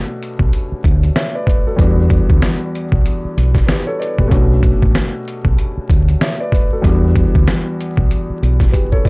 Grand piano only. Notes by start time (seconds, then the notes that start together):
Already playing: B2 A3 C#4 D4 F#4
1.16 C#5 E5
1.35 B4 D5
1.47 B4
1.67 F#4 A4
1.76 E2 G3 B3 D4
1.81 F#4
3.67 G4 B4
3.86 A4 C#5
4.00 B4 D5
4.19 G4 B4
4.28 B2 A3 C#4 D4
4.32 F#4
6.21 C#5 E5
6.40 B4 D5
6.53 B4
6.72 F#4 A4
6.82 E2 G3 B3 D4
6.86 F#4
8.72 G4 B4
8.92 A4 C#5
9.05 B4 D5